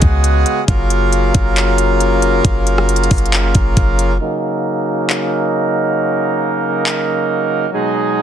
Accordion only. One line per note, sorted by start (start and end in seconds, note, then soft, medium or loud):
0.00 4.17 C#3 medium
0.00 0.64 G#3 medium
0.00 0.64 B3 medium
0.00 0.65 F#4 medium
0.00 0.64 G#4 medium
0.68 4.18 F#3 medium
0.68 4.18 A#3 medium
0.68 4.18 F4 medium
0.68 4.18 A#4 medium
4.21 7.70 C#3 medium
4.21 8.22 F#3 medium
4.21 7.70 A#3 medium
4.21 7.70 D#4 medium
4.21 7.70 A#4 medium
7.74 8.22 B2 medium
7.74 8.22 G#3 medium
7.74 8.22 D#4 medium
7.74 8.22 G#4 medium